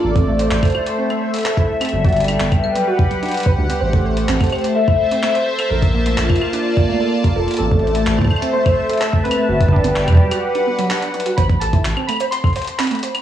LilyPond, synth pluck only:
\new Staff \with { instrumentName = "Synth pluck" } { \time 4/4 \key a \dorian \tempo 4 = 127 r16 c'16 a16 c''16 r16 a'16 e'16 r16 c'16 a16 c''16 r16 a'16 e'16 r16 c'16 | fis16 fis'16 r16 d'16 b16 r16 g16 fis16 fis'16 r16 fis16 d'16 r16 b'16 d'16 b16 | r16 a'16 c''16 r16 c'16 a16 c''16 r16 a'16 e'16 r16 c'16 a16 c''16 r16 a'16 | a'16 r16 bes16 a16 a'16 r16 f'16 d'16 r16 bes16 a16 a'16 r16 f'16 a'16 r16 |
c'16 a16 c''16 r16 a'16 e'16 r16 c'16 a16 c''16 r16 a'16 c''16 r16 c'16 a16 | fis'16 r16 d'16 b16 r16 g16 fis16 fis'16 r16 d'16 b16 fis16 d'16 d'16 d'16 fis'16 | c''16 r16 a'16 e'16 r16 c'16 a16 c''16 r16 a'16 c''16 r16 c'16 a16 c''16 r16 | }